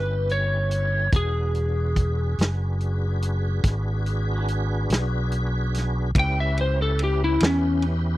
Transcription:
0.00 1.09 G1 medium
0.00 1.08 C#4 medium
0.00 1.08 E4 medium
0.00 1.08 G4 medium
0.00 0.32 B4 medium
0.00 1.08 B4 medium
0.29 1.10 C#5 medium
0.29 closed hi-hat medium
0.71 closed hi-hat medium
1.12 2.35 E1 medium
1.12 6.11 D4 medium
1.12 6.11 F#4 medium
1.12 6.11 G#4 medium
1.12 4.45 G#4 medium
1.12 6.11 B4 medium
1.12 kick medium
1.12 closed hi-hat medium
1.55 closed hi-hat soft
1.96 kick medium
1.96 closed hi-hat medium
2.38 3.60 F#1 medium
2.38 snare medium
2.38 closed hi-hat medium
2.81 closed hi-hat soft
3.22 closed hi-hat medium
3.64 4.86 G#1 medium
3.64 kick medium
3.64 snare soft
3.64 closed hi-hat medium
4.06 closed hi-hat medium
4.48 closed hi-hat medium
4.90 6.11 B1 medium
4.90 snare medium
4.90 closed hi-hat medium
5.32 closed hi-hat medium
5.74 snare soft
5.74 closed hi-hat medium
6.15 7.37 C#2 medium
6.15 8.17 C#4 medium
6.15 8.17 E4 medium
6.15 8.17 G4 medium
6.15 8.17 B4 medium
6.15 kick loud
6.15 ride medium
6.19 6.38 G5 medium
6.40 6.58 E5 medium
6.58 6.79 C5 medium
6.58 ride medium
6.82 7.00 A4 medium
6.99 ride medium
7.04 7.21 G4 medium
7.24 7.42 E4 medium
7.40 8.17 E2 medium
7.40 snare loud
7.40 ride medium
7.46 7.84 C#4 medium
7.82 ride medium

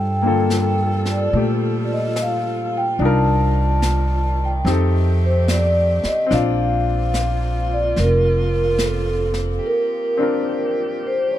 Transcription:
0.00 1.30 G2 medium
0.00 4.60 F3 medium
0.00 2.96 G3 medium
0.00 4.61 F4 medium
0.00 2.95 A4 medium
0.00 1.15 G5 medium
0.22 2.99 D3 soft
0.22 2.98 A#3 soft
0.22 3.00 F4 soft
0.27 3.01 A4 medium
0.50 snare soft
0.50 hi-hat pedal soft
1.05 snare soft
1.11 1.34 D5 medium
1.33 2.95 A#2 medium
1.33 3.00 A3 soft
1.33 3.01 G4 soft
1.33 brush sweep soft
1.84 1.92 D5 soft
1.93 2.19 D#5 medium
2.16 snare soft
2.16 hi-hat pedal soft
2.22 2.78 F5 medium
2.77 3.02 G5 medium
2.99 4.61 C2 medium
2.99 6.27 D#3 medium
2.99 4.65 D4 medium
2.99 4.65 D#4 medium
2.99 4.64 D5 medium
2.99 brush sweep soft
3.04 4.67 F4 soft
3.04 4.68 A#4 medium
3.04 4.46 A5 medium
3.82 snare soft
3.82 hi-hat pedal medium
4.45 4.66 G5 medium
4.63 6.00 F2 medium
4.63 6.28 A3 medium
4.63 11.22 C4 medium
4.63 6.25 C4 soft
4.63 6.31 D#4 soft
4.63 6.28 G4 medium
4.63 brush sweep soft
4.63 snare soft
4.67 6.31 G4 soft
4.67 6.32 A4 medium
5.25 5.50 C5 medium
5.48 6.07 D5 medium
5.48 snare soft
5.48 hi-hat pedal medium
6.03 6.32 D#5 medium
6.03 muted upright bass stroke soft
6.03 snare soft
6.26 11.22 F3 medium
6.26 11.22 A#3 medium
6.26 9.59 C4 medium
6.26 9.43 F4 medium
6.31 7.92 A#1 medium
6.31 9.61 D4 soft
6.31 9.62 F4 soft
6.31 7.75 F5 medium
6.31 brush sweep soft
6.31 snare soft
7.14 snare soft
7.14 hi-hat pedal soft
7.73 7.98 D5 medium
7.96 9.58 F1 medium
7.96 8.83 A#4 medium
7.96 brush sweep soft
7.96 snare soft
8.78 snare soft
8.78 hi-hat pedal medium
8.83 9.66 A4 medium
9.34 snare soft
9.60 11.39 G4 medium
9.66 11.07 A#4 medium
10.17 11.27 C4 soft
10.17 11.28 D4 soft
10.17 11.28 F4 soft
10.22 11.29 A#4 soft
11.07 11.28 C5 medium
11.28 11.39 E3 medium
11.28 11.39 A3 medium
11.28 11.39 C#4 medium
11.28 11.39 C#5 medium

